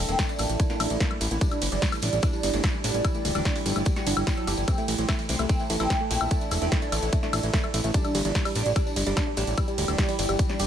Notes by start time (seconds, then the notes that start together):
Already playing: E3 E4 A4 E5 A5
0.09 E1 A#3 C4, closed hi-hat, tambourine
0.19 A3, kick, snare, closed hi-hat, tambourine
0.29 A3 D4, closed hi-hat, tambourine
0.39 A1 A#3, open hi-hat, ride, tambourine, high woodblock
0.49 A1 A3, closed hi-hat, tambourine
0.60 A3, kick, closed hi-hat, tambourine
0.70 A#3 D4, snare, tambourine
0.80 A1 A3, open hi-hat, ride, tambourine, high woodblock
0.90 A1 A3, closed hi-hat, tambourine
1.00 A#3, kick, snare, closed hi-hat, tambourine
1.11 A3, high woodblock
1.21 A1 A3, open hi-hat, ride, tambourine
1.31 A1 A#3, closed hi-hat, tambourine
1.41 G3 D4 G4, kick, closed hi-hat, tambourine
1.51 G3, closed hi-hat, tambourine, high woodblock
1.61 G1 A3 D5, open hi-hat, ride, tambourine
1.72 G1 G3 D4, closed hi-hat, tambourine
1.82 G3, kick, snare, closed hi-hat, tambourine
1.92 A3, open hi-hat, tambourine, high woodblock
2.02 A1 G3 D4, open hi-hat, ride, tambourine
2.13 A1 G3, closed hi-hat, tambourine
2.22 A3 D4, kick, closed hi-hat, tambourine, high woodblock
2.33 G3, tambourine
2.43 G1 G3 G5, open hi-hat, ride, tambourine
2.53 G1 A3 D4, closed hi-hat, tambourine
2.63 G3, kick, snare, closed hi-hat, tambourine, high woodblock
2.74 G3
2.84 A1 A3 D4, open hi-hat, ride, tambourine
2.94 A1 G3, closed hi-hat, tambourine
3.05 E4, kick, closed hi-hat, tambourine, high woodblock
3.14 A3, closed hi-hat, tambourine
3.25 D1 G3, open hi-hat, ride, tambourine
3.35 D1 G3 D4, closed hi-hat, tambourine, high woodblock
3.45 A3, kick, snare, closed hi-hat, tambourine
3.56 G3 E4, open hi-hat, tambourine
3.66 G1 G3, open hi-hat, ride, tambourine
3.76 G1 A3, closed hi-hat, tambourine, high woodblock
3.85 G3, kick, closed hi-hat, tambourine
3.96 G3 F#4, snare, closed hi-hat, tambourine
4.07 G1 D4, open hi-hat, ride, tambourine
4.17 G1 G3, closed hi-hat, tambourine, high woodblock
4.27 G3, kick, snare, closed hi-hat, tambourine
4.37 F#3 A4
4.47 G1 G4, open hi-hat, ride, tambourine, high woodblock
4.57 G1 G3, closed hi-hat, tambourine
4.68 A3 C4 A4, kick, closed hi-hat, tambourine, high woodblock
4.78 A3, closed hi-hat, tambourine
4.88 A1 A3, open hi-hat, ride, tambourine
4.93 E5 A5
4.98 A1 A3 C4, closed hi-hat, tambourine
5.09 A3, kick, snare, closed hi-hat, tambourine, high woodblock
5.19 A3, open hi-hat, tambourine
5.29 C2 A3 C4, open hi-hat, ride, tambourine
5.39 C2 A3, closed hi-hat, tambourine, high woodblock
5.49 C4, kick, closed hi-hat, tambourine
5.59 A3, tambourine
5.70 A1 A3, open hi-hat, ride, tambourine
5.80 A1 A3 C4, closed hi-hat, tambourine, high woodblock
5.90 A3, kick, snare, closed hi-hat, tambourine
6.00 A3
6.11 A#1 A3 C4, open hi-hat, ride, tambourine
6.21 A#1 A3, closed hi-hat, tambourine, high woodblock
6.31 A3 D4, kick, closed hi-hat, tambourine
6.41 A3, closed hi-hat, tambourine
6.51 E1 A3, open hi-hat, ride, tambourine, high woodblock
6.61 E1 A3 C4, closed hi-hat, tambourine
6.72 A3, kick, snare, closed hi-hat, tambourine
6.82 A3 D4, closed hi-hat, tambourine
6.92 A1 A3, open hi-hat, ride, tambourine, high woodblock
7.02 A1 A3, closed hi-hat, tambourine
7.13 A3, kick, closed hi-hat, tambourine
7.23 A3 D4, snare, tambourine
7.33 A1 A3, open hi-hat, ride, tambourine, high woodblock
7.43 A1 A3, closed hi-hat, tambourine
7.54 A3, kick, snare, closed hi-hat, tambourine
7.64 A3, high woodblock
7.74 A1 A3, open hi-hat, ride, tambourine
7.84 A1 A3, closed hi-hat, tambourine
7.94 G3 D4 G4, kick, closed hi-hat, tambourine
8.05 G3, closed hi-hat, tambourine, high woodblock
8.15 G1 G3, open hi-hat, ride, tambourine
8.25 G1 G3 D4, closed hi-hat, tambourine
8.32 G3 D5, kick, snare, closed hi-hat, tambourine
8.45 G3, open hi-hat, tambourine, high woodblock
8.55 A1 G3 D4, open hi-hat, ride, tambourine
8.66 A1 G3, closed hi-hat, tambourine
8.76 G3 D4, kick, closed hi-hat, tambourine, high woodblock
8.86 G3, tambourine
8.96 G1 G3, open hi-hat, ride, tambourine
9.07 G1 G3 D4 G5, closed hi-hat, tambourine
9.17 G3, kick, snare, closed hi-hat, tambourine, high woodblock
9.27 G3
9.37 A1 G3 D4, open hi-hat, ride, tambourine
9.47 A1 G3, closed hi-hat, tambourine
9.57 G3 E4, kick, closed hi-hat, tambourine, high woodblock
9.68 G3, closed hi-hat, tambourine
9.78 D1 G3, open hi-hat, ride, tambourine
9.88 D1 G3 D4, closed hi-hat, tambourine, high woodblock
9.98 G3, kick, snare, closed hi-hat, tambourine
10.09 G3 E4, open hi-hat, tambourine
10.19 G1 G3, open hi-hat, ride, tambourine
10.29 G1 G3, closed hi-hat, tambourine, high woodblock
10.39 G3, kick, closed hi-hat, tambourine
10.49 G3 D4, snare, tambourine
10.59 G1 G4, open hi-hat, ride, tambourine